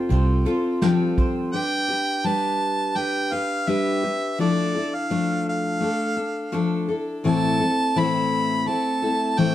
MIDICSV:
0, 0, Header, 1, 7, 480
1, 0, Start_track
1, 0, Tempo, 714286
1, 1036, Time_signature, 4, 2, 24, 8
1, 6417, End_track
2, 0, Start_track
2, 0, Title_t, "Harmonica"
2, 0, Program_c, 0, 22
2, 1028, Note_on_c, 0, 79, 121
2, 1516, Note_on_c, 0, 81, 115
2, 1526, Note_off_c, 0, 79, 0
2, 1996, Note_on_c, 0, 79, 108
2, 2006, Note_off_c, 0, 81, 0
2, 2238, Note_on_c, 0, 77, 108
2, 2248, Note_off_c, 0, 79, 0
2, 2478, Note_on_c, 0, 76, 104
2, 2488, Note_off_c, 0, 77, 0
2, 2954, Note_off_c, 0, 76, 0
2, 2958, Note_on_c, 0, 74, 97
2, 3322, Note_on_c, 0, 77, 100
2, 3332, Note_off_c, 0, 74, 0
2, 3678, Note_off_c, 0, 77, 0
2, 3688, Note_on_c, 0, 77, 96
2, 4613, Note_off_c, 0, 77, 0
2, 4884, Note_on_c, 0, 81, 126
2, 5370, Note_on_c, 0, 83, 127
2, 5380, Note_off_c, 0, 81, 0
2, 5827, Note_on_c, 0, 81, 114
2, 5837, Note_off_c, 0, 83, 0
2, 6308, Note_on_c, 0, 79, 104
2, 6318, Note_off_c, 0, 81, 0
2, 6417, Note_off_c, 0, 79, 0
2, 6417, End_track
3, 0, Start_track
3, 0, Title_t, "Pedal steel guitar"
3, 0, Program_c, 1, 26
3, 0, Note_on_c, 1, 79, 77
3, 530, Note_off_c, 1, 79, 0
3, 6417, End_track
4, 0, Start_track
4, 0, Title_t, "Mandolin"
4, 0, Program_c, 2, 25
4, 0, Note_on_c, 2, 57, 67
4, 0, Note_on_c, 2, 65, 54
4, 0, Note_on_c, 2, 79, 71
4, 69, Note_on_c, 2, 72, 58
4, 303, Note_off_c, 2, 65, 0
4, 311, Note_on_c, 2, 65, 61
4, 545, Note_off_c, 2, 79, 0
4, 553, Note_on_c, 2, 79, 65
4, 785, Note_off_c, 2, 72, 0
4, 793, Note_on_c, 2, 72, 50
4, 1033, Note_off_c, 2, 57, 0
4, 1082, Note_off_c, 2, 65, 0
4, 1083, Note_off_c, 2, 72, 0
4, 1083, Note_off_c, 2, 79, 0
4, 6417, End_track
5, 0, Start_track
5, 0, Title_t, "Steel-string acoustic guitar"
5, 0, Program_c, 3, 25
5, 0, Note_on_c, 3, 65, 50
5, 0, Note_on_c, 3, 69, 49
5, 61, Note_on_c, 3, 55, 69
5, 69, Note_off_c, 3, 65, 0
5, 69, Note_off_c, 3, 69, 0
5, 71, Note_on_c, 3, 60, 65
5, 77, Note_on_c, 3, 65, 66
5, 81, Note_on_c, 3, 69, 67
5, 296, Note_off_c, 3, 69, 0
5, 304, Note_on_c, 3, 69, 66
5, 308, Note_off_c, 3, 55, 0
5, 308, Note_off_c, 3, 65, 0
5, 313, Note_off_c, 3, 60, 0
5, 316, Note_on_c, 3, 65, 59
5, 323, Note_on_c, 3, 60, 50
5, 547, Note_off_c, 3, 60, 0
5, 548, Note_on_c, 3, 53, 83
5, 550, Note_off_c, 3, 69, 0
5, 551, Note_off_c, 3, 65, 0
5, 554, Note_on_c, 3, 55, 82
5, 555, Note_on_c, 3, 60, 86
5, 560, Note_on_c, 3, 65, 90
5, 561, Note_on_c, 3, 69, 97
5, 1022, Note_off_c, 3, 55, 0
5, 1030, Note_on_c, 3, 55, 78
5, 1032, Note_off_c, 3, 53, 0
5, 1032, Note_off_c, 3, 60, 0
5, 1035, Note_on_c, 3, 62, 79
5, 1036, Note_off_c, 3, 65, 0
5, 1039, Note_off_c, 3, 69, 0
5, 1039, Note_on_c, 3, 67, 83
5, 1043, Note_on_c, 3, 71, 92
5, 1259, Note_off_c, 3, 71, 0
5, 1267, Note_on_c, 3, 71, 55
5, 1269, Note_off_c, 3, 67, 0
5, 1273, Note_off_c, 3, 55, 0
5, 1276, Note_off_c, 3, 62, 0
5, 1278, Note_on_c, 3, 67, 44
5, 1285, Note_on_c, 3, 62, 47
5, 1506, Note_off_c, 3, 62, 0
5, 1507, Note_on_c, 3, 55, 81
5, 1511, Note_off_c, 3, 67, 0
5, 1512, Note_off_c, 3, 71, 0
5, 1514, Note_on_c, 3, 62, 83
5, 1520, Note_on_c, 3, 67, 88
5, 1522, Note_on_c, 3, 71, 94
5, 1975, Note_off_c, 3, 55, 0
5, 1983, Note_on_c, 3, 55, 57
5, 1985, Note_off_c, 3, 62, 0
5, 1985, Note_off_c, 3, 67, 0
5, 1988, Note_on_c, 3, 62, 70
5, 1992, Note_off_c, 3, 71, 0
5, 1993, Note_on_c, 3, 67, 62
5, 2000, Note_on_c, 3, 71, 71
5, 2222, Note_off_c, 3, 71, 0
5, 2230, Note_off_c, 3, 55, 0
5, 2230, Note_on_c, 3, 71, 60
5, 2231, Note_off_c, 3, 67, 0
5, 2232, Note_off_c, 3, 62, 0
5, 2239, Note_on_c, 3, 67, 56
5, 2245, Note_on_c, 3, 62, 43
5, 2464, Note_off_c, 3, 62, 0
5, 2469, Note_off_c, 3, 67, 0
5, 2469, Note_on_c, 3, 55, 83
5, 2472, Note_on_c, 3, 62, 85
5, 2473, Note_off_c, 3, 71, 0
5, 2477, Note_on_c, 3, 67, 85
5, 2482, Note_on_c, 3, 71, 96
5, 2700, Note_off_c, 3, 71, 0
5, 2708, Note_off_c, 3, 67, 0
5, 2708, Note_on_c, 3, 71, 51
5, 2712, Note_off_c, 3, 55, 0
5, 2714, Note_off_c, 3, 62, 0
5, 2716, Note_on_c, 3, 67, 47
5, 2727, Note_on_c, 3, 62, 43
5, 2947, Note_off_c, 3, 62, 0
5, 2948, Note_on_c, 3, 53, 78
5, 2952, Note_off_c, 3, 71, 0
5, 2952, Note_on_c, 3, 57, 81
5, 2954, Note_off_c, 3, 67, 0
5, 2955, Note_on_c, 3, 62, 86
5, 2957, Note_on_c, 3, 64, 91
5, 2958, Note_on_c, 3, 69, 92
5, 3182, Note_off_c, 3, 69, 0
5, 3190, Note_on_c, 3, 69, 57
5, 3191, Note_off_c, 3, 64, 0
5, 3192, Note_off_c, 3, 53, 0
5, 3194, Note_off_c, 3, 57, 0
5, 3195, Note_off_c, 3, 62, 0
5, 3200, Note_on_c, 3, 64, 55
5, 3209, Note_on_c, 3, 62, 44
5, 3425, Note_off_c, 3, 62, 0
5, 3428, Note_on_c, 3, 53, 79
5, 3433, Note_off_c, 3, 69, 0
5, 3433, Note_on_c, 3, 57, 78
5, 3433, Note_on_c, 3, 62, 93
5, 3437, Note_off_c, 3, 64, 0
5, 3440, Note_on_c, 3, 69, 84
5, 3898, Note_off_c, 3, 57, 0
5, 3900, Note_on_c, 3, 57, 70
5, 3904, Note_off_c, 3, 62, 0
5, 3911, Note_off_c, 3, 53, 0
5, 3912, Note_on_c, 3, 62, 64
5, 3918, Note_off_c, 3, 69, 0
5, 3921, Note_on_c, 3, 69, 81
5, 4135, Note_off_c, 3, 69, 0
5, 4143, Note_on_c, 3, 69, 63
5, 4147, Note_off_c, 3, 57, 0
5, 4153, Note_off_c, 3, 62, 0
5, 4160, Note_on_c, 3, 62, 50
5, 4380, Note_off_c, 3, 62, 0
5, 4381, Note_on_c, 3, 53, 86
5, 4385, Note_on_c, 3, 57, 108
5, 4388, Note_off_c, 3, 69, 0
5, 4389, Note_on_c, 3, 62, 93
5, 4396, Note_on_c, 3, 69, 105
5, 4619, Note_off_c, 3, 69, 0
5, 4627, Note_off_c, 3, 53, 0
5, 4627, Note_on_c, 3, 69, 61
5, 4629, Note_off_c, 3, 57, 0
5, 4631, Note_off_c, 3, 62, 0
5, 4636, Note_on_c, 3, 64, 55
5, 4645, Note_on_c, 3, 62, 49
5, 4864, Note_on_c, 3, 45, 82
5, 4868, Note_on_c, 3, 52, 97
5, 4869, Note_off_c, 3, 64, 0
5, 4870, Note_off_c, 3, 62, 0
5, 4870, Note_off_c, 3, 69, 0
5, 4872, Note_on_c, 3, 57, 88
5, 4872, Note_on_c, 3, 60, 97
5, 4877, Note_on_c, 3, 64, 87
5, 4878, Note_on_c, 3, 69, 91
5, 5097, Note_off_c, 3, 69, 0
5, 5104, Note_off_c, 3, 64, 0
5, 5105, Note_on_c, 3, 69, 57
5, 5108, Note_off_c, 3, 45, 0
5, 5110, Note_off_c, 3, 52, 0
5, 5110, Note_off_c, 3, 60, 0
5, 5112, Note_off_c, 3, 57, 0
5, 5112, Note_on_c, 3, 64, 52
5, 5118, Note_on_c, 3, 60, 50
5, 5121, Note_on_c, 3, 57, 42
5, 5342, Note_on_c, 3, 45, 82
5, 5343, Note_off_c, 3, 57, 0
5, 5344, Note_off_c, 3, 60, 0
5, 5347, Note_off_c, 3, 64, 0
5, 5349, Note_off_c, 3, 69, 0
5, 5349, Note_on_c, 3, 52, 76
5, 5351, Note_on_c, 3, 57, 85
5, 5352, Note_on_c, 3, 60, 84
5, 5355, Note_on_c, 3, 64, 94
5, 5357, Note_on_c, 3, 69, 86
5, 5818, Note_off_c, 3, 57, 0
5, 5821, Note_on_c, 3, 57, 65
5, 5826, Note_off_c, 3, 64, 0
5, 5827, Note_off_c, 3, 45, 0
5, 5827, Note_off_c, 3, 60, 0
5, 5829, Note_on_c, 3, 60, 72
5, 5830, Note_off_c, 3, 52, 0
5, 5834, Note_on_c, 3, 64, 65
5, 5836, Note_off_c, 3, 69, 0
5, 5839, Note_on_c, 3, 69, 75
5, 6055, Note_off_c, 3, 69, 0
5, 6062, Note_off_c, 3, 64, 0
5, 6063, Note_on_c, 3, 69, 56
5, 6066, Note_off_c, 3, 57, 0
5, 6067, Note_off_c, 3, 60, 0
5, 6070, Note_on_c, 3, 64, 57
5, 6075, Note_on_c, 3, 60, 63
5, 6080, Note_on_c, 3, 57, 49
5, 6301, Note_off_c, 3, 57, 0
5, 6301, Note_off_c, 3, 60, 0
5, 6301, Note_on_c, 3, 45, 88
5, 6304, Note_off_c, 3, 64, 0
5, 6304, Note_on_c, 3, 52, 91
5, 6307, Note_off_c, 3, 69, 0
5, 6309, Note_on_c, 3, 57, 84
5, 6309, Note_on_c, 3, 60, 92
5, 6312, Note_on_c, 3, 64, 96
5, 6314, Note_on_c, 3, 69, 85
5, 6417, Note_off_c, 3, 45, 0
5, 6417, Note_off_c, 3, 52, 0
5, 6417, Note_off_c, 3, 57, 0
5, 6417, Note_off_c, 3, 60, 0
5, 6417, Note_off_c, 3, 64, 0
5, 6417, Note_off_c, 3, 69, 0
5, 6417, End_track
6, 0, Start_track
6, 0, Title_t, "Fingered electric bass"
6, 0, Program_c, 4, 33
6, 74, Note_on_c, 4, 36, 92
6, 302, Note_off_c, 4, 36, 0
6, 6417, End_track
7, 0, Start_track
7, 0, Title_t, "Drums"
7, 70, Note_on_c, 9, 42, 64
7, 137, Note_off_c, 9, 42, 0
7, 310, Note_on_c, 9, 42, 46
7, 377, Note_off_c, 9, 42, 0
7, 550, Note_on_c, 9, 38, 88
7, 550, Note_on_c, 9, 42, 62
7, 617, Note_off_c, 9, 38, 0
7, 617, Note_off_c, 9, 42, 0
7, 791, Note_on_c, 9, 36, 64
7, 791, Note_on_c, 9, 42, 50
7, 858, Note_off_c, 9, 42, 0
7, 859, Note_off_c, 9, 36, 0
7, 6417, End_track
0, 0, End_of_file